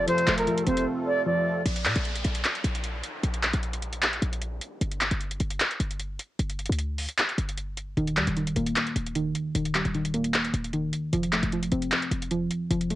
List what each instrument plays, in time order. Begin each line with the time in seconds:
Already playing: accordion C3 A3 F4 A4
0.08 synth pluck F3, flute C5, closed hi-hat
0.18 closed hi-hat
0.27 808-style bass F1, synth pluck A3, clap, closed hi-hat
0.38 flute A#4, closed hi-hat
0.47 synth pluck F3, closed hi-hat
0.58 closed hi-hat
0.67 808-style bass F1, synth pluck C4, flute C5, closed hi-hat
0.77 closed hi-hat
1.06 flute D5
1.26 synth pluck F3, flute D5
1.65 808-style bass A#1, closed hi-hat, downlifter
1.76 closed hi-hat
1.85 808-style bass A#2, clap, closed hi-hat
1.96 808-style bass A#1, closed hi-hat
2.05 closed hi-hat
2.15 closed hi-hat
2.24 808-style bass A#1, closed hi-hat
2.35 closed hi-hat
2.44 clap, closed hi-hat
2.55 closed hi-hat
2.64 808-style bass A#1, closed hi-hat
2.75 closed hi-hat
2.84 closed hi-hat
3.03 closed hi-hat
3.23 808-style bass A#1, closed hi-hat
3.34 closed hi-hat
3.43 clap, closed hi-hat
3.53 808-style bass A#1, closed hi-hat
3.63 closed hi-hat
3.73 closed hi-hat
3.82 closed hi-hat
3.93 closed hi-hat
4.02 clap, closed hi-hat
4.13 closed hi-hat
4.22 808-style bass A#1, closed hi-hat
4.33 closed hi-hat
4.42 closed hi-hat
4.61 closed hi-hat
4.81 808-style bass G1, closed hi-hat
4.92 closed hi-hat
5.01 clap, closed hi-hat
5.11 808-style bass G1, closed hi-hat
5.21 closed hi-hat
5.31 closed hi-hat
5.40 808-style bass G1, closed hi-hat
5.51 closed hi-hat
5.60 clap, closed hi-hat
5.71 closed hi-hat
5.80 808-style bass G1, closed hi-hat
5.91 closed hi-hat
6.00 closed hi-hat
6.19 closed hi-hat
6.39 808-style bass G1, closed hi-hat
6.50 closed hi-hat
6.59 closed hi-hat
6.66 808-style bass D2, closed hi-hat
6.72 closed hi-hat
6.78 closed hi-hat
6.98 open hi-hat
7.08 closed hi-hat
7.18 clap, closed hi-hat
7.29 closed hi-hat
7.38 808-style bass G1, closed hi-hat
7.49 closed hi-hat
7.57 closed hi-hat
7.77 closed hi-hat
7.97 808-style bass D#1, synth pluck D#3, closed hi-hat
8.07 closed hi-hat
8.17 808-style bass D#2, synth pluck G3, clap, closed hi-hat
8.27 808-style bass D#1, closed hi-hat
8.37 synth pluck D#3, closed hi-hat
8.47 closed hi-hat
8.56 808-style bass D#1, synth pluck A#3, closed hi-hat
8.66 closed hi-hat
8.76 clap, closed hi-hat
8.87 closed hi-hat
8.96 808-style bass D#1, closed hi-hat
9.06 closed hi-hat
9.15 synth pluck D#3, closed hi-hat
9.35 closed hi-hat
9.55 808-style bass D#1, synth pluck D#3, closed hi-hat
9.65 closed hi-hat
9.75 synth pluck G3, clap, closed hi-hat
9.85 808-style bass D#1, closed hi-hat
9.94 synth pluck D#3, closed hi-hat
10.05 closed hi-hat
10.14 synth pluck A#3, closed hi-hat
10.24 closed hi-hat
10.34 clap, closed hi-hat
10.45 closed hi-hat
10.54 808-style bass D#1, closed hi-hat
10.64 closed hi-hat
10.73 synth pluck D#3, closed hi-hat
10.93 closed hi-hat
11.13 808-style bass F1, synth pluck F3, closed hi-hat
11.23 closed hi-hat
11.33 synth pluck A3, clap, closed hi-hat
11.43 808-style bass F1, closed hi-hat
11.52 synth pluck F3, closed hi-hat
11.63 closed hi-hat
11.72 808-style bass F1, synth pluck C4, closed hi-hat
11.82 closed hi-hat
11.92 clap, closed hi-hat
12.02 closed hi-hat
12.12 808-style bass F1, closed hi-hat
12.22 closed hi-hat
12.31 synth pluck F3, closed hi-hat
12.51 closed hi-hat
12.71 808-style bass F1, synth pluck F3, closed hi-hat
12.81 closed hi-hat
12.90 synth pluck A3, closed hi-hat